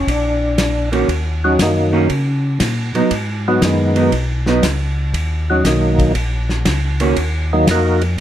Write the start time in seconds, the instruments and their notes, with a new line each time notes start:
0.07 tonewheel organ A#1 D4, kick, ride
0.58 snare, hi-hat pedal, ride
0.92 hollow-body jazz guitar D#3 A#3 C#4 F#4, ride
1.08 tonewheel organ D#2, kick, ride
1.44 tonewheel organ F#3 C#4 D#4 F#4
1.59 tonewheel organ F#2 D#3 F#3 A#3 D#4, kick, snare, hi-hat pedal, ride
1.93 hollow-body jazz guitar D#3 A#3 C#4 F#4
2.09 tonewheel organ C#3, kick, ride
2.60 tonewheel organ A#2, kick, snare, hi-hat pedal, ride
2.94 tonewheel organ A#2, hollow-body jazz guitar F#3 B3 D#4, ride
3.11 tonewheel organ G#2, kick, ride
3.48 tonewheel organ F#3 B3 D#4 F#4
3.62 tonewheel organ F#2 D#3 G#3 B3 D#4, kick, snare, hi-hat pedal, ride
3.96 hollow-body jazz guitar F#3 B3 D#4, ride
4.12 tonewheel organ B1, kick, ride
4.46 hollow-body jazz guitar F#3 B3 D#4, snare
4.63 tonewheel organ C#2, kick, snare, hi-hat pedal, ride
5.14 tonewheel organ D#2, kick, ride
5.50 tonewheel organ F#3 C#4 D#4 F#4
5.65 tonewheel organ B1 D#3 F#3 A#3 D#4, kick, snare, hi-hat pedal, ride
5.99 kick, ride
6.15 tonewheel organ A#1, kick, ride
6.49 snare
6.65 tonewheel organ C#2, kick, snare, hi-hat pedal, ride
7.00 hollow-body jazz guitar D#3 A#3 C#4 F#4, ride
7.16 tonewheel organ D#2, kick, ride
7.53 tonewheel organ D#3 F#3 A#3 D#4
7.67 tonewheel organ F2 A#3 D#4 F#4 A#4, kick, snare, hi-hat pedal, ride
8.01 ride